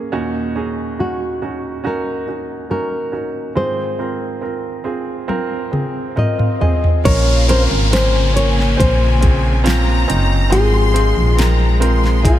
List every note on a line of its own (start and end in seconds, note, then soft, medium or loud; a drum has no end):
0.00 0.14 A#3 medium
0.00 0.12 C#4 medium
0.00 0.14 F4 medium
0.00 0.13 G#4 medium
0.00 0.14 A#4 medium
0.12 3.52 D#2 medium
0.12 3.52 A#2 medium
0.12 0.53 C#4 medium
0.12 0.53 D#4 medium
0.12 0.53 F#4 medium
0.55 0.96 C#4 medium
0.55 0.96 D#4 medium
0.55 0.97 G#4 medium
0.99 1.39 C#4 soft
0.99 1.39 D#4 soft
0.99 1.40 F#4 medium
0.99 1.86 F#4 medium
1.42 1.82 C#4 medium
1.42 1.82 D#4 soft
1.42 1.82 F#4 medium
1.84 2.25 C#4 medium
1.84 2.25 D#4 medium
1.84 2.25 F#4 medium
1.84 2.70 A#4 medium
2.27 2.68 C#4 soft
2.27 2.68 D#4 soft
2.27 2.68 F#4 medium
2.70 3.10 C#4 medium
2.70 3.11 D#4 soft
2.70 3.11 F#4 medium
2.70 3.52 A#4 medium
3.12 3.53 C#4 medium
3.12 3.54 D#4 soft
3.12 3.54 F#4 medium
3.55 7.02 G#2 soft
3.55 7.01 D#3 soft
3.55 3.97 C4 medium
3.55 3.97 F4 medium
3.55 3.97 G#4 medium
3.55 6.14 C5 medium
3.99 4.40 C4 medium
3.99 4.40 F4 soft
3.99 4.41 A#4 medium
4.41 4.83 C4 medium
4.41 4.82 F4 soft
4.41 4.84 A#4 medium
4.84 5.26 C4 medium
4.84 5.26 F4 medium
4.84 5.27 G#4 medium
5.28 5.70 C4 medium
5.28 5.70 F4 medium
5.28 5.71 A#4 medium
5.28 high tom soft
5.72 6.14 C4 medium
5.72 6.15 F4 soft
5.72 6.15 G#4 medium
5.72 mid tom soft
6.16 6.59 C4 medium
6.16 6.59 F4 medium
6.16 6.59 A#4 medium
6.16 6.37 D#5 soft
6.16 6.60 D#5 medium
6.16 mid tom medium
6.39 6.60 F5 soft
6.39 mid tom medium
6.61 7.03 C4 medium
6.61 7.03 F4 medium
6.61 7.03 G#4 medium
6.61 7.05 D#5 medium
6.61 7.02 G#5 soft
6.61 floor tom medium
6.84 floor tom medium
7.04 7.67 A#1 loud
7.04 8.79 A#2 medium
7.04 8.32 A#2 medium
7.04 10.49 C#3 medium
7.04 8.32 F3 medium
7.04 8.79 F3 medium
7.04 7.46 A#3 medium
7.04 10.49 A#3 medium
7.04 7.47 C#4 medium
7.04 8.79 C#4 medium
7.04 7.47 A#4 loud
7.04 7.46 C#5 loud
7.04 7.88 F5 medium
7.04 kick loud
7.04 closed hi-hat medium
7.04 crash medium
7.04 downlifter medium
7.08 8.82 F4 medium
7.48 7.89 C4 medium
7.48 7.90 C#4 medium
7.48 7.90 A#4 loud
7.48 7.62 C5 loud
7.48 closed hi-hat medium
7.71 8.76 G#1 medium
7.91 8.33 C4 medium
7.91 8.33 C#4 medium
7.91 8.34 A#4 medium
7.91 8.36 C5 loud
7.91 9.62 G#5 medium
7.91 snare medium
7.91 closed hi-hat medium
8.33 8.76 A#3 medium
8.33 8.76 C#4 medium
8.33 8.77 C#5 medium
8.33 closed hi-hat medium
8.59 snare soft
8.77 10.05 A#1 loud
8.77 9.23 F3 soft
8.77 9.19 C4 medium
8.77 9.19 C#4 medium
8.77 9.23 C#4 medium
8.77 9.20 C5 medium
8.77 10.58 C5 medium
8.77 kick medium
8.77 closed hi-hat loud
8.81 9.23 C4 medium
8.81 9.21 F4 medium
9.21 9.62 C4 medium
9.21 10.55 C4 medium
9.21 9.63 C#4 medium
9.21 10.55 F4 medium
9.21 9.63 G#4 medium
9.21 kick medium
9.21 closed hi-hat medium
9.25 10.54 C#4 soft
9.64 10.06 C4 medium
9.64 10.06 C#4 medium
9.64 10.06 F4 loud
9.64 10.52 A#5 loud
9.64 snare loud
9.64 closed hi-hat medium
10.08 10.54 F#1 medium
10.08 10.48 C4 medium
10.08 10.50 C#4 medium
10.08 10.50 D#4 medium
10.08 closed hi-hat medium
10.50 11.13 G#1 loud
10.50 11.77 G#2 medium
10.50 12.24 G#2 medium
10.50 11.77 D#3 medium
10.50 12.25 D#3 medium
10.50 12.39 F3 medium
10.50 12.23 F3 medium
10.50 12.39 G#3 medium
10.50 10.92 C4 medium
10.50 10.93 F4 medium
10.50 10.93 G#4 medium
10.50 12.30 G#4 loud
10.50 11.39 C6 loud
10.50 closed hi-hat medium
10.54 12.24 G#3 medium
10.54 12.26 C4 medium
10.54 12.26 F4 medium
10.94 11.35 C4 medium
10.94 11.35 F4 medium
10.94 11.36 G#4 loud
10.94 closed hi-hat medium
11.17 12.39 A#1 medium
11.36 11.78 C4 medium
11.36 11.79 F4 medium
11.36 11.79 A#4 medium
11.36 11.82 A#5 medium
11.36 snare medium
11.36 closed hi-hat medium
11.80 12.22 C4 medium
11.80 12.22 F4 medium
11.80 12.22 A#4 medium
11.80 12.22 C6 medium
11.80 closed hi-hat medium
12.04 snare soft
12.23 12.39 F3 medium
12.23 12.39 G#3 medium
12.23 12.39 C4 medium
12.23 12.39 F4 medium
12.23 12.39 G#4 medium
12.23 12.39 G#5 loud
12.23 kick medium
12.23 closed hi-hat loud